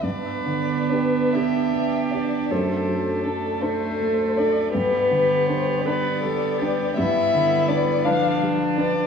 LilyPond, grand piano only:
\new Staff \with { instrumentName = "Grand piano" } { \time 6/8 \key g \major \tempo 4. = 54 g,8 d8 <d' g'>8 <d' g'>8 b8 <d' g'>8 | fis,8 fis8 <d' a'>8 <d' a'>8 a8 <d' a'>8 | g,8 d8 <d' b'>8 <d' b'>8 g8 <d' b'>8 | g,8 d8 <d' b'>8 <d' b'>8 g8 <d' b'>8 | }